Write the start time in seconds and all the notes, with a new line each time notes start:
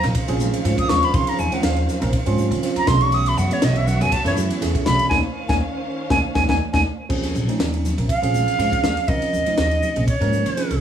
Already playing: C#3 D#3 C5 F5
0.03 A#1 F3 C4 C#4 A#4, snare, ride
0.14 C#4 G#4, kick, ride
0.28 A#1 F3 C4 C#4 G#4, ride
0.40 hi-hat pedal, high conga, low conga
0.54 ride
0.64 G#2 F3 C4 C#4 F4, ride
0.78 D#6, kick, ride
0.89 D#2 C#6, snare, hi-hat pedal, high conga, low conga
1.03 B5, snare, ride
1.13 D#3 F3 C4 C#4 G#4 C6, kick, ride
1.27 A#5, muted upright bass stroke, ride
1.38 D#2 G#5, hi-hat pedal, low conga
1.51 F3 C4 C#4 F4 F#5, muted upright bass stroke, ride, high conga
1.63 D#2 F5, snare, ride
1.76 ride
1.88 snare, hi-hat pedal, low conga
2.00 A#1 F3 C4 C#4 A#4, ride
2.12 C#4 G#4, muted upright bass stroke, kick, ride
2.26 G#2 F3 C4 C#4 F4, ride
2.38 hi-hat pedal, high conga, low conga
2.51 D#3, ride
2.62 F3 C4 C#4 F4, snare, ride
2.76 F#2 A#5, ride
2.86 B1 E3 A3 B3 C#4 F#4 G#4 C#5 E5 C6, kick, snare, hi-hat pedal, high conga, low conga
3.01 C#6, ride
3.12 D#6, ride
3.26 B5, ride
3.37 F#2 F#5, hi-hat pedal, low conga
3.50 E3 A3 C#4 G#4 C#5, ride, high conga
3.62 B1 D#5, snare, ride
3.76 E5, ride
3.87 F#5, snare, hi-hat pedal, low conga
3.99 F#2 E3 A3 C#4 G#4 G#5, snare, ride
4.11 C#4 E4 A5, kick, ride
4.24 F#2 E3 A3 C#4 E4 C#5, snare, ride
4.37 hi-hat pedal, high conga, low conga
4.50 ride
4.61 E2 E3 A3 C#4 G#4, snare, ride
4.75 kick, ride
4.86 B1 B5, snare, hi-hat pedal, high conga, low conga
4.99 ride
5.09 D#2 D#3 A#3 C#4 D#4 C5 F5 G#5, kick, snare, high conga
5.49 D#2 A#3 C#4 D#4 G#5, kick, snare, high conga
6.10 D#2 A#3 C#4 D#4 G#5, kick, snare, high conga
6.35 D#2 A#3 C#4 D#4 G#5, kick, snare, high conga
6.49 D#2 A#3 C#4 D#4 G#5, kick, snare, high conga
6.73 D#2 A#3 C#4 D#4 G#5, kick, snare, high conga
7.09 D#2 F3 C4 C#4 G#4, kick, crash
7.23 snare, ride
7.35 A#1, hi-hat pedal, low conga
7.47 F3 C4 C#4 D#4, ride, high conga
7.59 D#2, snare, ride
7.74 ride
7.85 snare, hi-hat pedal, low conga
7.97 A#1 F3 C4 C#4 A#4, ride
8.09 C#4 G#4 F5, kick, ride
8.22 A#1 F3 C4 C#4 G#4, ride
8.34 hi-hat pedal, high conga, low conga
8.48 ride
8.59 G#2 F3 C4 C#4 G#4, snare, ride
8.72 kick, ride
8.83 D#2, snare, hi-hat pedal, high conga, low conga
8.97 snare, ride
9.08 D#3 F3 C4 C#4 A#4 D#5, kick, ride
9.21 muted upright bass stroke, ride
9.33 D#2, hi-hat pedal, low conga
9.46 F3 C4 C#4 D#4, muted upright bass stroke, ride, high conga
9.58 D#2, snare, ride
9.71 ride
9.82 hi-hat pedal, low conga
9.96 A#1 F3 C4 C#4 G#4, ride
10.07 C#4 D#4 C#5, muted upright bass stroke, kick, ride
10.20 G#2 F3 A#3 C#4 A#4, ride
10.32 hi-hat pedal, high conga, low conga
10.46 D#3, ride
10.56 F3 C4 C#4 G#4, snare, ride
10.71 C2, ride